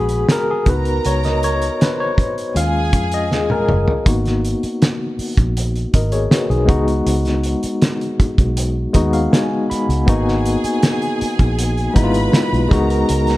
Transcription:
0.00 0.23 A#1 medium
0.00 0.62 G#3 medium
0.00 0.63 B3 soft
0.00 0.68 F#4 medium
0.00 0.51 G#4 medium
0.00 0.25 B4 medium
0.00 0.25 B5 medium
0.09 closed hi-hat medium
0.29 0.50 A#4 loud
0.29 snare loud
0.29 closed hi-hat medium
0.51 0.67 G#4 medium
0.66 0.99 C#2 medium
0.66 2.51 B3 medium
0.66 2.52 D#4 soft
0.66 2.52 F#4 medium
0.66 2.15 A#4 medium
0.66 1.07 B4 medium
0.66 2.15 A#5 loud
0.66 kick loud
0.66 closed hi-hat medium
0.85 closed hi-hat soft
1.05 1.69 C#2 medium
1.05 1.25 C#5 medium
1.05 closed hi-hat medium
1.24 1.44 D#5 medium
1.24 snare soft
1.24 closed hi-hat soft
1.43 1.82 C#5 loud
1.43 closed hi-hat medium
1.62 closed hi-hat medium
1.81 1.93 B4 medium
1.81 snare loud
1.81 closed hi-hat medium
1.93 1.99 C5 medium
2.00 2.35 C#5 loud
2.18 kick medium
2.18 closed hi-hat medium
2.38 closed hi-hat soft
2.54 2.94 D#2 loud
2.54 3.64 G#3 medium
2.54 3.64 C#4 soft
2.54 3.65 F4 medium
2.54 3.66 G#4 medium
2.54 3.09 F5 medium
2.54 3.66 G#5 loud
2.54 closed hi-hat loud
2.93 3.32 F2 medium
2.93 kick medium
2.93 closed hi-hat medium
3.12 3.32 D#5 loud
3.12 closed hi-hat medium
3.32 3.63 D#2 medium
3.32 3.51 G#4 medium
3.32 snare medium
3.50 4.03 A#4 medium
3.50 high tom medium
3.69 3.85 F#1 medium
3.69 mid tom medium
3.88 floor tom medium
4.06 4.54 G#1 medium
4.06 5.27 A#3 medium
4.06 5.27 B3 medium
4.06 5.28 D#4 medium
4.06 5.28 F#4 medium
4.06 kick loud
4.06 closed hi-hat loud
4.25 snare soft
4.25 closed hi-hat soft
4.45 closed hi-hat medium
4.63 muted fingered electric bass stroke soft
4.63 closed hi-hat soft
4.82 snare loud
4.82 closed hi-hat medium
5.19 muted fingered electric bass stroke medium
5.19 open hi-hat medium
5.37 5.85 A#1 medium
5.37 kick medium
5.37 closed hi-hat medium
5.57 closed hi-hat loud
5.76 closed hi-hat soft
5.94 6.26 G#1 medium
5.94 6.13 A#4 medium
5.94 6.12 D#5 medium
5.94 kick medium
5.94 closed hi-hat loud
6.12 6.31 G#4 medium
6.12 6.30 C#5 medium
6.12 closed hi-hat medium
6.31 6.49 F#4 medium
6.31 6.49 B4 medium
6.31 snare loud
6.31 closed hi-hat loud
6.50 6.69 B1 medium
6.50 6.67 D#4 medium
6.50 6.86 G#4 medium
6.50 closed hi-hat soft
6.66 7.01 C#2 medium
6.66 7.88 G#3 medium
6.66 7.89 B3 medium
6.66 7.90 D#4 medium
6.66 7.90 F#4 loud
6.66 kick loud
6.66 closed hi-hat medium
6.88 closed hi-hat medium
7.06 7.54 C#2 medium
7.06 closed hi-hat loud
7.25 snare soft
7.25 closed hi-hat soft
7.43 closed hi-hat medium
7.63 muted fingered electric bass stroke soft
7.63 closed hi-hat medium
7.82 snare loud
7.82 closed hi-hat medium
8.01 closed hi-hat soft
8.20 muted fingered electric bass stroke medium
8.20 kick loud
8.20 closed hi-hat medium
8.38 8.86 B1 medium
8.38 kick medium
8.38 closed hi-hat soft
8.57 closed hi-hat loud
8.93 9.27 D#2 medium
8.93 9.85 G#3 medium
8.93 9.85 B3 medium
8.93 9.86 D#4 medium
8.93 9.86 F#4 medium
8.93 9.12 D#5 medium
8.93 kick medium
8.93 closed hi-hat loud
9.13 9.31 F5 medium
9.13 9.31 F#5 medium
9.13 closed hi-hat medium
9.31 9.50 G#5 medium
9.31 9.67 G#5 medium
9.31 snare loud
9.31 closed hi-hat loud
9.51 10.05 F#5 medium
9.70 10.05 B5 medium
9.70 muted fingered electric bass stroke soft
9.70 closed hi-hat medium
9.89 10.05 C#2 medium
9.89 closed hi-hat medium
10.06 10.55 G#1 loud
10.06 11.28 A#3 medium
10.06 11.28 B3 medium
10.06 11.29 D#4 medium
10.06 11.29 F#4 medium
10.06 11.92 G#4 medium
10.06 11.92 G#5 medium
10.06 kick loud
10.06 closed hi-hat medium
10.28 snare soft
10.46 closed hi-hat medium
10.64 muted fingered electric bass stroke soft
10.64 closed hi-hat medium
10.83 snare loud
10.83 closed hi-hat loud
11.02 closed hi-hat soft
11.21 muted fingered electric bass stroke medium
11.21 closed hi-hat medium
11.39 11.87 A#1 medium
11.39 kick medium
11.39 closed hi-hat medium
11.59 closed hi-hat loud
11.78 closed hi-hat soft
11.93 12.28 G#1 medium
11.93 12.67 G#3 medium
11.93 12.69 B3 medium
11.93 12.70 D#4 medium
11.93 12.03 E4 medium
11.93 12.70 B4 medium
11.93 12.70 B5 loud
11.93 kick loud
11.93 closed hi-hat loud
12.04 12.75 F4 loud
12.14 closed hi-hat medium
12.33 snare loud
12.33 closed hi-hat loud
12.53 12.68 B1 medium
12.53 closed hi-hat soft
12.69 13.03 C#2 medium
12.69 13.37 G#3 loud
12.69 13.37 B3 medium
12.69 13.37 D#4 medium
12.69 13.37 A#4 medium
12.69 13.37 A#5 medium
12.69 kick loud
12.69 closed hi-hat medium
12.73 13.37 F#4 loud
12.90 closed hi-hat medium
13.09 13.37 C#2 medium
13.09 closed hi-hat loud
13.27 snare soft
13.27 closed hi-hat soft

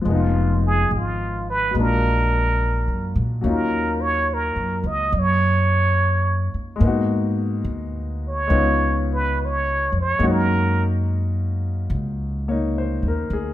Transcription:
0.01 0.86 F1 medium
0.01 1.73 F3 soft
0.01 1.72 G#3 soft
0.08 1.76 B3 soft
0.08 1.77 D#4 soft
0.13 0.63 F4 medium
0.13 1.79 F4 medium
0.67 0.99 G#4 medium
0.91 1.71 G#1 medium
0.98 1.49 F4 medium
1.50 1.82 B4 medium
1.71 3.40 F#3 soft
1.71 3.43 G#3 soft
1.75 2.83 A#1 medium
1.75 3.41 A#3 soft
1.79 3.45 D4 soft
1.79 3.45 F4 medium
1.79 3.19 A#4 medium
2.88 3.14 F#2 medium
3.16 3.42 A#2 medium
3.41 4.52 D#2 medium
3.41 6.80 F#3 soft
3.41 6.77 A#3 soft
3.41 6.82 C#4 soft
3.45 6.82 D#4 soft
3.45 6.83 F4 medium
3.45 4.03 A#4 medium
4.01 4.35 C#5 loud
4.34 4.88 A#4 medium
4.56 4.82 F#2 medium
4.84 5.10 C#2 medium
4.84 5.20 D#5 medium
5.12 6.50 F#2 medium
5.19 6.58 C#5 medium
6.54 muted upright bass stroke soft
6.76 8.46 G#3 medium
6.76 8.50 A#3 soft
6.80 7.62 G#2 medium
6.80 8.48 B3 soft
6.85 8.50 D#4 soft
6.85 8.54 F#4 medium
7.64 8.46 D2 medium
8.28 9.07 C#5 medium
8.47 9.89 C#2 medium
8.47 10.17 G#3 medium
8.47 10.20 B3 soft
8.47 10.19 C#4 soft
8.47 10.21 D#4 soft
8.53 10.22 F4 medium
9.13 9.47 B4 medium
9.45 9.98 C#5 medium
9.92 10.18 F2 medium
10.01 10.33 C#5 medium
10.19 11.86 F#2 medium
10.19 13.54 G#3 soft
10.19 12.47 A#3 soft
10.19 13.54 C#4 soft
10.19 12.50 D#4 soft
10.23 13.54 F#4 medium
10.32 10.84 A#4 medium
11.90 12.99 C#2 medium
12.48 13.54 A#3 soft
12.48 13.54 D#4 soft
12.48 12.92 C#5 soft
12.78 13.30 C5 soft
13.03 13.29 D#2 medium
13.08 13.50 A#4 soft
13.30 13.54 D2 medium
13.30 13.54 G#4 soft

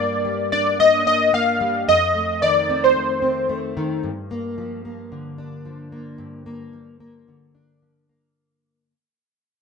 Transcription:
0.00 1.87 G2 medium
0.00 0.79 A#3 medium
0.00 0.52 D4 medium
0.00 0.51 D5 loud
0.25 1.59 G3 medium
0.52 1.05 D4 medium
0.52 0.78 D5 medium
0.80 1.32 A#3 medium
0.80 1.06 D#5 loud
1.06 1.94 D4 medium
1.06 1.32 D#5 loud
1.33 1.93 A#3 medium
1.33 1.84 F5 medium
1.61 1.94 G3 medium
1.88 4.03 F2 medium
1.88 2.44 D#5 loud
2.15 2.95 A3 medium
2.42 3.76 D#3 medium
2.42 2.85 D5 medium
2.69 3.21 C4 medium
2.84 3.61 C5 medium
2.96 3.48 A3 medium
3.22 4.09 C4 medium
3.49 4.10 A3 medium
3.77 4.10 D#3 medium
4.03 6.18 G2 medium
4.31 4.85 A#3 medium
4.58 5.65 F3 medium
4.85 5.92 A#3 soft
5.12 7.28 D3 medium
5.38 7.54 D4 medium
5.65 6.73 F3 medium
5.92 6.46 A#3 medium
6.18 8.93 G2 medium
6.46 7.00 A#3 medium
6.73 7.82 F3 medium
7.00 8.09 A#3 medium
7.28 8.93 D3 medium
7.55 8.93 D4 medium
7.82 8.93 F3 soft
8.09 8.93 A#3 medium

